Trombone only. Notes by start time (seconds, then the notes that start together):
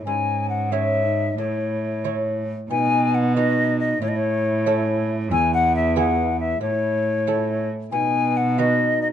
0.06 C#4
0.71 C#4
1.05 D#4
1.38 E4
2.71 D#4
3.37 D#4
4.02 E4
5.31 E4
6.62 E4
7.93 D#4
8.58 D#4